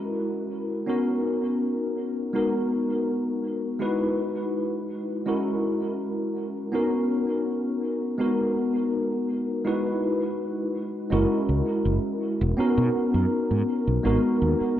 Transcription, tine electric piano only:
Already playing: G#3 C#4 E4 F#4 A#4
0.86 B3 C#4 D#4 F#4 A#4
2.33 G#3 B3 D#4 F#4 A#4
3.79 G#3 D#4 E4 F#4 B4
5.26 G#3 C#4 E4 F#4 A#4
6.72 B3 C#4 D#4 F#4 A#4
8.18 G#3 B3 D#4 F#4 A#4
9.64 G#3 D#4 E4 F#4 B4
11.10 G#3 C#4 E4 F#4 A#4
12.57 B3 C#4 D#4 F#4 A#4
14.03 G#3 B3 D#4 F#4 A#4

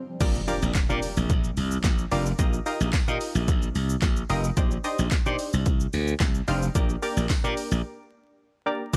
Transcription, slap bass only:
0.21 A#1
0.62 A#1
0.75 muted slap bass stroke
0.90 A#2
1.17 A#1
1.30 A#1
1.57 C2
1.84 A#1
2.12 F1
2.39 A#1
2.81 A#1
3.08 A#2
3.35 A#1
3.48 A#1
3.75 C2
4.02 A#1
4.30 F1
4.57 A#1
4.99 A#1
5.26 A#2
5.53 C2
5.66 C2
5.93 D2
6.20 C2
6.48 F1
6.75 A#1
7.17 A#1
7.44 A#2
7.71 A#1
8.93 A#1

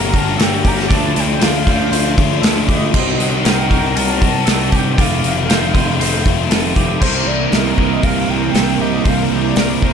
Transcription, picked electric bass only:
Already playing: G1
0.14 G1
0.39 G1
0.65 G1
0.91 D2
1.16 D2
1.41 D2
1.67 D2
1.92 D2
2.18 D2
2.42 D2
2.69 D2
2.94 C2
3.19 C2
3.45 C2
3.71 C2
3.97 C2
4.22 C2
4.47 C2
4.72 C2
4.99 F1
5.23 F1
5.49 F1
5.75 F1
6.02 F1
6.26 F1
6.51 F1
6.76 F1
7.02 C2
7.26 C2
7.53 C2
7.78 C2
8.03 C2
8.29 C2
8.54 C2
8.80 C2
9.05 C2
9.31 C2
9.57 C2
9.83 C2

